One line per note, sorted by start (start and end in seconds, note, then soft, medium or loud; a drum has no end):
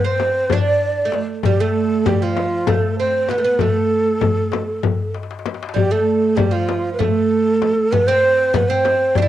0.04 0.52 C4 medium
0.04 0.55 C5 medium
0.20 darbuka tek medium
0.20 frame drum medium
0.50 1.07 D4 medium
0.50 1.22 D5 loud
0.50 frame drum medium
0.50 darbuka dum medium
1.05 1.19 A3 medium
1.12 darbuka tek medium
1.12 frame drum medium
1.43 1.59 G3 medium
1.43 1.62 G4 medium
1.43 frame drum medium
1.43 darbuka dum medium
1.60 2.06 A3 medium
1.60 2.08 A4 medium
2.06 2.22 G3 medium
2.06 2.24 G4 medium
2.06 frame drum medium
2.06 darbuka dum medium
2.22 2.69 F3 medium
2.22 2.70 F4 medium
2.37 darbuka tek medium
2.37 frame drum medium
2.67 2.99 A3 medium
2.67 2.99 A4 medium
2.67 frame drum medium
2.67 darbuka dum medium
2.99 3.31 C4 medium
2.99 3.31 C5 medium
3.29 3.37 B3 medium
3.29 3.62 B4 medium
3.29 darbuka tek medium
3.29 frame drum medium
3.38 3.44 A3 medium
3.44 3.60 B3 medium
3.59 5.11 A3 medium
3.59 5.15 A4 medium
3.59 frame drum medium
3.59 darbuka dum medium
4.21 frame drum medium
4.21 darbuka dum medium
4.52 darbuka tek medium
4.52 frame drum medium
4.83 frame drum medium
4.83 darbuka dum medium
5.14 darbuka tek medium
5.23 darbuka ka medium
5.31 darbuka tek medium
5.39 darbuka ka medium
5.46 darbuka tek medium
5.46 frame drum medium
5.54 darbuka ka medium
5.63 darbuka tek medium
5.69 darbuka ka medium
5.74 5.91 G3 medium
5.74 5.93 G4 medium
5.74 frame drum medium
5.74 darbuka dum medium
5.91 6.36 A3 medium
5.91 6.38 A4 medium
6.36 6.53 G3 medium
6.36 6.54 G4 medium
6.36 frame drum medium
6.36 darbuka dum medium
6.51 6.95 F3 medium
6.51 6.92 F4 medium
6.69 darbuka tek medium
6.69 frame drum medium
6.93 7.01 B4 medium
6.99 7.92 A3 medium
6.99 7.94 A4 medium
6.99 darbuka dum medium
6.99 frame drum medium
7.62 darbuka tek medium
7.62 frame drum medium
7.92 8.08 B3 medium
7.92 8.09 B4 loud
7.92 frame drum medium
7.92 darbuka dum medium
8.07 8.56 C4 medium
8.07 8.57 C5 loud
8.54 8.70 B3 medium
8.54 8.70 B4 medium
8.54 darbuka dum medium
8.54 frame drum medium
8.68 9.17 C4 medium
8.68 9.18 C5 medium
8.85 darbuka tek medium
8.85 frame drum medium
9.15 9.21 D4 medium
9.15 9.28 D5 loud
9.15 frame drum medium
9.15 darbuka dum medium
9.22 9.28 E4 medium